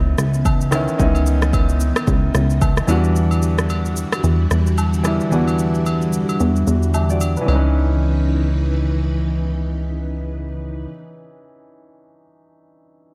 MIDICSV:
0, 0, Header, 1, 5, 480
1, 0, Start_track
1, 0, Tempo, 540541
1, 883, Time_signature, 4, 2, 24, 8
1, 11670, End_track
2, 0, Start_track
2, 0, Title_t, "Grand piano"
2, 0, Program_c, 0, 0
2, 0, Control_c, 0, 64, 127
2, 0, Note_on_c, 0, 59, 78
2, 0, Note_on_c, 0, 61, 78
2, 0, Note_on_c, 0, 63, 83
2, 0, Note_on_c, 0, 64, 93
2, 631, Note_on_c, 0, 51, 90
2, 641, Note_off_c, 0, 59, 0
2, 641, Note_on_c, 0, 59, 79
2, 652, Note_off_c, 0, 61, 0
2, 652, Note_on_c, 0, 61, 78
2, 662, Note_off_c, 0, 64, 0
2, 662, Note_on_c, 0, 64, 98
2, 836, Note_off_c, 0, 51, 0
2, 842, Note_off_c, 0, 59, 0
2, 847, Note_off_c, 0, 61, 0
2, 852, Note_off_c, 0, 64, 0
2, 871, Note_off_c, 0, 63, 0
2, 871, Note_on_c, 0, 63, 86
2, 882, Note_on_c, 0, 59, 80
2, 892, Note_on_c, 0, 61, 79
2, 903, Note_on_c, 0, 64, 94
2, 1653, Note_off_c, 0, 63, 0
2, 1658, Note_off_c, 0, 59, 0
2, 1663, Note_off_c, 0, 61, 0
2, 1669, Note_off_c, 0, 64, 0
2, 2551, Note_on_c, 0, 52, 88
2, 2561, Note_on_c, 0, 55, 83
2, 2571, Note_on_c, 0, 62, 83
2, 2576, Control_c, 0, 64, 0
2, 2582, Note_on_c, 0, 66, 98
2, 2751, Control_c, 0, 64, 127
2, 3332, Note_off_c, 0, 52, 0
2, 3338, Note_off_c, 0, 55, 0
2, 3343, Note_off_c, 0, 62, 0
2, 3348, Note_off_c, 0, 66, 0
2, 4470, Note_on_c, 0, 52, 84
2, 4481, Note_on_c, 0, 55, 79
2, 4492, Note_on_c, 0, 62, 74
2, 4502, Note_on_c, 0, 64, 91
2, 4676, Note_off_c, 0, 52, 0
2, 4682, Note_off_c, 0, 55, 0
2, 4687, Note_off_c, 0, 62, 0
2, 4692, Note_off_c, 0, 64, 0
2, 4709, Note_on_c, 0, 52, 83
2, 4721, Note_on_c, 0, 55, 73
2, 4730, Note_on_c, 0, 62, 76
2, 4740, Note_on_c, 0, 66, 92
2, 5491, Note_off_c, 0, 52, 0
2, 5497, Note_off_c, 0, 55, 0
2, 5502, Note_off_c, 0, 62, 0
2, 5507, Note_off_c, 0, 66, 0
2, 6166, Note_on_c, 0, 76, 61
2, 6172, Note_on_c, 0, 67, 53
2, 6297, Note_off_c, 0, 76, 0
2, 6300, Note_off_c, 0, 67, 0
2, 6307, Note_on_c, 0, 74, 68
2, 6313, Note_on_c, 0, 66, 57
2, 6532, Note_off_c, 0, 74, 0
2, 6536, Note_off_c, 0, 66, 0
2, 6545, Note_on_c, 0, 71, 65
2, 6549, Note_on_c, 0, 62, 54
2, 6583, Note_on_c, 0, 52, 76
2, 6625, Note_on_c, 0, 61, 70
2, 6653, Control_c, 0, 64, 0
2, 6667, Note_on_c, 0, 63, 70
2, 6695, Note_off_c, 0, 71, 0
2, 6709, Note_on_c, 0, 71, 86
2, 6774, Note_off_c, 0, 62, 0
2, 6802, Control_c, 0, 64, 127
2, 9587, Note_off_c, 0, 52, 0
2, 9629, Note_off_c, 0, 61, 0
2, 9670, Note_off_c, 0, 63, 0
2, 9712, Note_off_c, 0, 71, 0
2, 11670, End_track
3, 0, Start_track
3, 0, Title_t, "String machine"
3, 0, Program_c, 1, 50
3, 0, Note_on_c, 1, 49, 77
3, 0, Note_on_c, 1, 52, 85
3, 0, Note_on_c, 1, 59, 70
3, 0, Note_on_c, 1, 75, 73
3, 2527, Note_off_c, 1, 59, 0
3, 2528, Note_off_c, 1, 49, 0
3, 2528, Note_off_c, 1, 75, 0
3, 2563, Note_on_c, 1, 50, 76
3, 2563, Note_on_c, 1, 55, 71
3, 2563, Note_on_c, 1, 66, 87
3, 6607, Note_off_c, 1, 50, 0
3, 6607, Note_off_c, 1, 66, 0
3, 6608, Note_off_c, 1, 52, 0
3, 6608, Note_off_c, 1, 55, 0
3, 6643, Note_on_c, 1, 49, 79
3, 6643, Note_on_c, 1, 63, 69
3, 6644, Note_on_c, 1, 71, 85
3, 6646, Note_on_c, 1, 52, 68
3, 9647, Note_off_c, 1, 49, 0
3, 9647, Note_off_c, 1, 63, 0
3, 9648, Note_off_c, 1, 71, 0
3, 9650, Note_off_c, 1, 52, 0
3, 11670, End_track
4, 0, Start_track
4, 0, Title_t, "Analog synth bass"
4, 0, Program_c, 2, 38
4, 0, Note_on_c, 2, 37, 96
4, 128, Note_off_c, 2, 37, 0
4, 160, Note_on_c, 2, 37, 93
4, 781, Note_off_c, 2, 37, 0
4, 884, Note_on_c, 2, 37, 98
4, 1711, Note_off_c, 2, 37, 0
4, 1840, Note_on_c, 2, 37, 95
4, 2048, Note_off_c, 2, 37, 0
4, 2082, Note_on_c, 2, 37, 92
4, 2496, Note_off_c, 2, 37, 0
4, 2559, Note_on_c, 2, 40, 100
4, 3595, Note_off_c, 2, 40, 0
4, 3762, Note_on_c, 2, 40, 94
4, 3969, Note_off_c, 2, 40, 0
4, 4004, Note_on_c, 2, 40, 92
4, 4624, Note_off_c, 2, 40, 0
4, 4723, Note_on_c, 2, 40, 105
4, 5550, Note_off_c, 2, 40, 0
4, 5686, Note_on_c, 2, 40, 92
4, 5891, Note_off_c, 2, 40, 0
4, 5925, Note_on_c, 2, 40, 91
4, 6544, Note_off_c, 2, 40, 0
4, 6644, Note_on_c, 2, 37, 94
4, 9648, Note_off_c, 2, 37, 0
4, 11670, End_track
5, 0, Start_track
5, 0, Title_t, "Drums"
5, 162, Note_on_c, 9, 82, 88
5, 163, Note_on_c, 9, 37, 88
5, 251, Note_off_c, 9, 82, 0
5, 252, Note_off_c, 9, 37, 0
5, 300, Note_on_c, 9, 82, 52
5, 389, Note_off_c, 9, 82, 0
5, 401, Note_on_c, 9, 82, 76
5, 402, Note_on_c, 9, 36, 81
5, 404, Note_on_c, 9, 67, 70
5, 404, Note_on_c, 9, 77, 64
5, 490, Note_off_c, 9, 82, 0
5, 491, Note_off_c, 9, 36, 0
5, 493, Note_off_c, 9, 67, 0
5, 493, Note_off_c, 9, 77, 0
5, 541, Note_on_c, 9, 82, 61
5, 629, Note_off_c, 9, 82, 0
5, 639, Note_on_c, 9, 82, 95
5, 642, Note_on_c, 9, 37, 85
5, 644, Note_on_c, 9, 67, 74
5, 728, Note_off_c, 9, 82, 0
5, 730, Note_off_c, 9, 37, 0
5, 732, Note_off_c, 9, 67, 0
5, 783, Note_on_c, 9, 82, 50
5, 871, Note_off_c, 9, 82, 0
5, 883, Note_on_c, 9, 82, 72
5, 884, Note_on_c, 9, 36, 98
5, 972, Note_off_c, 9, 82, 0
5, 973, Note_off_c, 9, 36, 0
5, 1020, Note_on_c, 9, 67, 61
5, 1025, Note_on_c, 9, 82, 49
5, 1108, Note_off_c, 9, 67, 0
5, 1114, Note_off_c, 9, 82, 0
5, 1121, Note_on_c, 9, 82, 85
5, 1210, Note_off_c, 9, 82, 0
5, 1261, Note_on_c, 9, 82, 50
5, 1263, Note_on_c, 9, 37, 91
5, 1349, Note_off_c, 9, 82, 0
5, 1352, Note_off_c, 9, 37, 0
5, 1361, Note_on_c, 9, 36, 90
5, 1361, Note_on_c, 9, 82, 70
5, 1366, Note_on_c, 9, 67, 72
5, 1450, Note_off_c, 9, 36, 0
5, 1450, Note_off_c, 9, 82, 0
5, 1455, Note_off_c, 9, 67, 0
5, 1501, Note_on_c, 9, 82, 53
5, 1590, Note_off_c, 9, 82, 0
5, 1600, Note_on_c, 9, 82, 96
5, 1688, Note_off_c, 9, 82, 0
5, 1741, Note_on_c, 9, 37, 101
5, 1742, Note_on_c, 9, 82, 50
5, 1744, Note_on_c, 9, 67, 64
5, 1830, Note_off_c, 9, 37, 0
5, 1831, Note_off_c, 9, 82, 0
5, 1833, Note_off_c, 9, 67, 0
5, 1841, Note_on_c, 9, 82, 71
5, 1842, Note_on_c, 9, 36, 103
5, 1930, Note_off_c, 9, 36, 0
5, 1930, Note_off_c, 9, 82, 0
5, 2083, Note_on_c, 9, 82, 87
5, 2084, Note_on_c, 9, 37, 90
5, 2171, Note_off_c, 9, 82, 0
5, 2172, Note_off_c, 9, 37, 0
5, 2221, Note_on_c, 9, 82, 52
5, 2310, Note_off_c, 9, 82, 0
5, 2321, Note_on_c, 9, 82, 75
5, 2322, Note_on_c, 9, 36, 81
5, 2323, Note_on_c, 9, 67, 64
5, 2323, Note_on_c, 9, 77, 64
5, 2410, Note_off_c, 9, 82, 0
5, 2411, Note_off_c, 9, 36, 0
5, 2411, Note_off_c, 9, 67, 0
5, 2411, Note_off_c, 9, 77, 0
5, 2460, Note_on_c, 9, 82, 60
5, 2463, Note_on_c, 9, 37, 89
5, 2549, Note_off_c, 9, 82, 0
5, 2551, Note_off_c, 9, 37, 0
5, 2558, Note_on_c, 9, 82, 93
5, 2564, Note_on_c, 9, 67, 76
5, 2647, Note_off_c, 9, 82, 0
5, 2653, Note_off_c, 9, 67, 0
5, 2700, Note_on_c, 9, 82, 47
5, 2789, Note_off_c, 9, 82, 0
5, 2804, Note_on_c, 9, 82, 76
5, 2892, Note_off_c, 9, 82, 0
5, 2939, Note_on_c, 9, 67, 63
5, 2944, Note_on_c, 9, 82, 50
5, 3028, Note_off_c, 9, 67, 0
5, 3033, Note_off_c, 9, 82, 0
5, 3039, Note_on_c, 9, 82, 79
5, 3128, Note_off_c, 9, 82, 0
5, 3181, Note_on_c, 9, 82, 50
5, 3184, Note_on_c, 9, 37, 92
5, 3270, Note_off_c, 9, 82, 0
5, 3273, Note_off_c, 9, 37, 0
5, 3282, Note_on_c, 9, 82, 70
5, 3285, Note_on_c, 9, 67, 75
5, 3371, Note_off_c, 9, 82, 0
5, 3374, Note_off_c, 9, 67, 0
5, 3422, Note_on_c, 9, 82, 51
5, 3511, Note_off_c, 9, 82, 0
5, 3520, Note_on_c, 9, 82, 100
5, 3609, Note_off_c, 9, 82, 0
5, 3663, Note_on_c, 9, 37, 93
5, 3663, Note_on_c, 9, 82, 52
5, 3665, Note_on_c, 9, 67, 68
5, 3752, Note_off_c, 9, 37, 0
5, 3752, Note_off_c, 9, 82, 0
5, 3754, Note_off_c, 9, 67, 0
5, 3763, Note_on_c, 9, 82, 71
5, 3852, Note_off_c, 9, 82, 0
5, 4003, Note_on_c, 9, 82, 82
5, 4005, Note_on_c, 9, 37, 83
5, 4092, Note_off_c, 9, 82, 0
5, 4093, Note_off_c, 9, 37, 0
5, 4143, Note_on_c, 9, 82, 54
5, 4231, Note_off_c, 9, 82, 0
5, 4244, Note_on_c, 9, 67, 64
5, 4244, Note_on_c, 9, 77, 66
5, 4244, Note_on_c, 9, 82, 77
5, 4332, Note_off_c, 9, 82, 0
5, 4333, Note_off_c, 9, 67, 0
5, 4333, Note_off_c, 9, 77, 0
5, 4382, Note_on_c, 9, 82, 60
5, 4470, Note_off_c, 9, 82, 0
5, 4480, Note_on_c, 9, 82, 91
5, 4483, Note_on_c, 9, 37, 82
5, 4486, Note_on_c, 9, 67, 75
5, 4569, Note_off_c, 9, 82, 0
5, 4572, Note_off_c, 9, 37, 0
5, 4575, Note_off_c, 9, 67, 0
5, 4621, Note_on_c, 9, 82, 45
5, 4710, Note_off_c, 9, 82, 0
5, 4724, Note_on_c, 9, 82, 72
5, 4813, Note_off_c, 9, 82, 0
5, 4861, Note_on_c, 9, 67, 65
5, 4866, Note_on_c, 9, 82, 52
5, 4950, Note_off_c, 9, 67, 0
5, 4955, Note_off_c, 9, 82, 0
5, 4962, Note_on_c, 9, 82, 82
5, 5051, Note_off_c, 9, 82, 0
5, 5103, Note_on_c, 9, 82, 48
5, 5192, Note_off_c, 9, 82, 0
5, 5204, Note_on_c, 9, 82, 69
5, 5207, Note_on_c, 9, 67, 74
5, 5293, Note_off_c, 9, 82, 0
5, 5296, Note_off_c, 9, 67, 0
5, 5344, Note_on_c, 9, 82, 52
5, 5433, Note_off_c, 9, 82, 0
5, 5442, Note_on_c, 9, 82, 94
5, 5531, Note_off_c, 9, 82, 0
5, 5585, Note_on_c, 9, 82, 51
5, 5586, Note_on_c, 9, 67, 65
5, 5674, Note_off_c, 9, 82, 0
5, 5675, Note_off_c, 9, 67, 0
5, 5683, Note_on_c, 9, 82, 70
5, 5771, Note_off_c, 9, 82, 0
5, 5825, Note_on_c, 9, 82, 45
5, 5914, Note_off_c, 9, 82, 0
5, 5925, Note_on_c, 9, 82, 81
5, 6014, Note_off_c, 9, 82, 0
5, 6061, Note_on_c, 9, 82, 49
5, 6150, Note_off_c, 9, 82, 0
5, 6163, Note_on_c, 9, 82, 74
5, 6164, Note_on_c, 9, 67, 63
5, 6164, Note_on_c, 9, 77, 66
5, 6251, Note_off_c, 9, 82, 0
5, 6253, Note_off_c, 9, 67, 0
5, 6253, Note_off_c, 9, 77, 0
5, 6302, Note_on_c, 9, 82, 58
5, 6391, Note_off_c, 9, 82, 0
5, 6400, Note_on_c, 9, 82, 90
5, 6404, Note_on_c, 9, 67, 73
5, 6489, Note_off_c, 9, 82, 0
5, 6493, Note_off_c, 9, 67, 0
5, 6541, Note_on_c, 9, 82, 45
5, 6630, Note_off_c, 9, 82, 0
5, 6645, Note_on_c, 9, 67, 75
5, 6733, Note_off_c, 9, 67, 0
5, 11670, End_track
0, 0, End_of_file